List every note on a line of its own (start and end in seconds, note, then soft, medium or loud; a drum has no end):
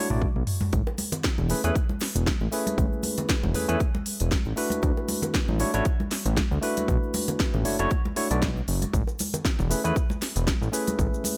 0.10 0.26 A1 loud
0.10 0.26 A3 medium
0.10 0.26 D4 medium
0.10 0.27 E4 medium
0.10 0.27 F#4 medium
0.10 0.27 D5 medium
0.10 mid tom medium
0.22 kick loud
0.22 mid tom medium
0.22 high conga medium
0.36 0.43 B1 medium
0.36 mid tom medium
0.47 mid tom medium
0.47 open hi-hat medium
0.61 mid tom medium
0.61 high conga medium
0.73 0.82 A1 loud
0.73 kick loud
0.73 closed hi-hat soft
0.73 cabasa medium
0.87 high bongo medium
0.87 cabasa soft
0.98 open hi-hat loud
0.98 high conga medium
0.98 cabasa medium
1.12 closed hi-hat medium
1.12 high bongo medium
1.12 low conga medium
1.12 cabasa soft
1.23 kick loud
1.23 snare loud
1.23 closed hi-hat medium
1.23 cabasa medium
1.38 1.54 E1 loud
1.38 high conga medium
1.38 low conga medium
1.38 cabasa soft
1.49 1.61 A3 medium
1.49 1.61 C#4 medium
1.49 1.61 E4 medium
1.49 1.61 G#4 medium
1.49 1.61 B4 medium
1.49 open hi-hat medium
1.49 cabasa medium
1.64 1.71 E2 medium
1.64 1.74 A3 medium
1.64 1.74 C#4 medium
1.64 1.74 E4 medium
1.64 1.74 G#4 medium
1.64 1.74 B4 loud
1.64 closed hi-hat medium
1.64 cabasa soft
1.75 kick loud
1.75 closed hi-hat soft
1.75 cabasa medium
1.89 high conga medium
1.89 cabasa soft
2.00 snare medium
2.00 open hi-hat loud
2.00 cabasa medium
2.15 2.31 E1 loud
2.15 closed hi-hat medium
2.15 cabasa soft
2.26 kick loud
2.26 snare loud
2.26 closed hi-hat soft
2.26 high conga medium
2.26 cabasa soft
2.40 2.48 A1 medium
2.40 cabasa soft
2.52 3.52 A3 medium
2.52 3.52 C#4 medium
2.52 3.52 E4 medium
2.52 3.53 G#4 medium
2.52 3.53 B4 medium
2.52 open hi-hat medium
2.52 cabasa medium
2.66 closed hi-hat medium
2.66 high conga medium
2.66 cabasa soft
2.78 2.87 A1 loud
2.78 kick loud
2.78 closed hi-hat soft
2.78 cabasa soft
2.93 cabasa soft
3.03 open hi-hat loud
3.03 high conga medium
3.03 cabasa medium
3.18 closed hi-hat medium
3.18 high bongo medium
3.18 low conga medium
3.18 cabasa soft
3.29 kick loud
3.29 snare loud
3.29 closed hi-hat medium
3.29 cabasa medium
3.43 3.54 E1 loud
3.43 high conga medium
3.43 low conga medium
3.43 cabasa soft
3.54 3.66 E2 soft
3.54 3.66 A3 medium
3.54 3.66 C#4 medium
3.54 3.66 E4 medium
3.54 3.66 G#4 medium
3.54 3.66 B4 medium
3.54 open hi-hat medium
3.54 cabasa medium
3.68 3.77 E2 medium
3.68 3.78 A3 medium
3.68 3.79 C#4 medium
3.68 3.79 E4 medium
3.68 3.79 G#4 medium
3.68 3.79 B4 loud
3.68 closed hi-hat medium
3.68 cabasa soft
3.80 kick loud
3.80 closed hi-hat medium
3.80 cabasa soft
3.95 high conga loud
3.95 cabasa soft
4.06 open hi-hat loud
4.06 cabasa medium
4.20 4.36 E1 medium
4.20 closed hi-hat medium
4.20 cabasa soft
4.31 kick loud
4.31 snare loud
4.31 closed hi-hat soft
4.31 high conga medium
4.31 cabasa soft
4.45 4.53 A1 medium
4.45 cabasa soft
4.56 5.57 A3 medium
4.56 5.57 D4 medium
4.56 5.57 E4 medium
4.56 5.57 F#4 medium
4.56 5.58 B4 medium
4.56 open hi-hat medium
4.56 cabasa medium
4.70 closed hi-hat medium
4.70 high conga loud
4.70 cabasa soft
4.82 4.92 D2 loud
4.82 kick loud
4.82 closed hi-hat soft
4.82 cabasa soft
4.97 high bongo soft
4.97 cabasa soft
5.08 open hi-hat loud
5.08 high conga medium
5.08 cabasa medium
5.22 closed hi-hat medium
5.22 high bongo medium
5.22 low conga medium
5.22 cabasa soft
5.34 kick loud
5.34 snare loud
5.34 closed hi-hat soft
5.34 cabasa soft
5.48 5.64 A1 loud
5.48 high conga medium
5.48 low conga medium
5.48 cabasa soft
5.59 5.71 A3 medium
5.59 5.71 D4 medium
5.59 5.71 E4 medium
5.59 5.71 F#4 medium
5.59 5.71 C#5 medium
5.59 open hi-hat medium
5.59 cabasa medium
5.74 5.82 A1 medium
5.74 5.84 A3 medium
5.74 5.84 D4 medium
5.74 5.84 E4 medium
5.74 5.84 F#4 medium
5.74 5.84 C#5 loud
5.74 closed hi-hat medium
5.74 cabasa soft
5.85 kick loud
5.85 closed hi-hat soft
5.85 cabasa soft
6.00 high conga medium
6.00 cabasa soft
6.11 snare medium
6.11 open hi-hat loud
6.11 cabasa medium
6.26 6.41 A1 loud
6.26 closed hi-hat medium
6.26 cabasa soft
6.37 kick loud
6.37 snare loud
6.37 closed hi-hat soft
6.37 high conga medium
6.37 cabasa soft
6.51 6.59 D2 medium
6.51 cabasa soft
6.61 7.62 A3 medium
6.61 7.62 D4 medium
6.61 7.62 E4 medium
6.61 7.63 F#4 medium
6.61 7.63 B4 medium
6.61 open hi-hat medium
6.61 cabasa medium
6.77 closed hi-hat medium
6.77 high conga medium
6.77 cabasa soft
6.88 6.97 B1 loud
6.88 kick loud
6.88 closed hi-hat soft
6.88 cabasa soft
7.03 cabasa soft
7.14 open hi-hat loud
7.14 high conga loud
7.14 cabasa medium
7.28 closed hi-hat medium
7.28 high bongo medium
7.28 low conga medium
7.28 cabasa soft
7.40 kick loud
7.40 snare loud
7.40 closed hi-hat soft
7.40 cabasa medium
7.54 7.65 A1 loud
7.54 high conga medium
7.54 low conga medium
7.54 cabasa soft
7.65 7.77 F#1 soft
7.65 7.76 A3 medium
7.65 7.76 D4 medium
7.65 7.76 E4 medium
7.65 7.76 F#4 medium
7.65 7.76 C#5 medium
7.65 open hi-hat medium
7.65 cabasa medium
7.79 7.87 F#1 medium
7.79 7.89 A3 medium
7.79 7.89 D4 medium
7.79 7.89 E4 medium
7.79 7.89 F#4 medium
7.79 7.89 C#5 loud
7.79 closed hi-hat medium
7.79 cabasa soft
7.90 kick loud
7.90 closed hi-hat soft
7.90 cabasa soft
8.05 high conga medium
8.05 cabasa soft
8.16 8.27 A3 medium
8.16 8.27 D4 medium
8.16 8.28 E4 medium
8.16 8.28 F#4 medium
8.16 8.28 C#5 medium
8.16 open hi-hat loud
8.16 cabasa medium
8.30 8.61 B1 medium
8.30 8.47 A3 medium
8.30 8.47 D4 medium
8.30 8.47 E4 medium
8.30 8.47 F#4 medium
8.30 8.47 D5 medium
8.30 closed hi-hat medium
8.30 cabasa soft
8.42 kick loud
8.42 snare loud
8.42 closed hi-hat soft
8.42 high conga medium
8.42 cabasa soft
8.57 cabasa soft
8.68 8.85 F#1 medium
8.68 open hi-hat medium
8.68 cabasa medium
8.82 closed hi-hat medium
8.82 high conga medium
8.82 cabasa soft
8.93 9.03 A1 loud
8.93 kick loud
8.93 closed hi-hat soft
8.93 cabasa soft
9.07 high bongo soft
9.07 cabasa soft
9.19 open hi-hat loud
9.19 high conga medium
9.19 cabasa medium
9.33 closed hi-hat medium
9.33 high bongo medium
9.33 low conga medium
9.33 cabasa soft
9.45 kick loud
9.45 snare loud
9.45 closed hi-hat soft
9.45 cabasa medium
9.45 cabasa soft
9.59 9.74 E1 loud
9.59 high conga medium
9.59 low conga medium
9.59 cabasa soft
9.70 9.81 A3 medium
9.70 9.81 C#4 medium
9.70 9.81 E4 medium
9.70 9.81 G#4 medium
9.70 9.82 B4 medium
9.70 open hi-hat medium
9.70 cabasa medium
9.84 9.92 E2 medium
9.84 9.94 A3 medium
9.84 9.94 C#4 medium
9.84 9.94 E4 medium
9.84 9.94 G#4 medium
9.84 9.94 B4 loud
9.84 closed hi-hat medium
9.84 cabasa soft
9.96 kick loud
9.96 closed hi-hat soft
9.96 cabasa medium
9.96 cabasa soft
10.09 high conga medium
10.09 cabasa soft
10.11 cabasa soft
10.22 snare medium
10.22 open hi-hat loud
10.22 cabasa loud
10.22 cabasa medium
10.36 10.51 E1 loud
10.36 closed hi-hat medium
10.36 cabasa soft
10.47 kick loud
10.47 snare loud
10.47 closed hi-hat soft
10.47 high conga medium
10.47 cabasa medium
10.47 cabasa soft
10.62 10.69 A1 medium
10.62 cabasa soft
10.72 11.37 A3 medium
10.72 11.37 C#4 medium
10.72 11.37 E4 medium
10.72 11.37 G#4 medium
10.72 11.37 B4 medium
10.72 open hi-hat medium
10.72 cabasa medium
10.87 closed hi-hat medium
10.87 high conga medium
10.87 cabasa soft
10.99 11.08 A1 loud
10.99 kick loud
10.99 closed hi-hat soft
10.99 cabasa soft
11.14 cabasa soft
11.24 open hi-hat loud
11.24 high conga medium
11.24 cabasa loud
11.24 cabasa medium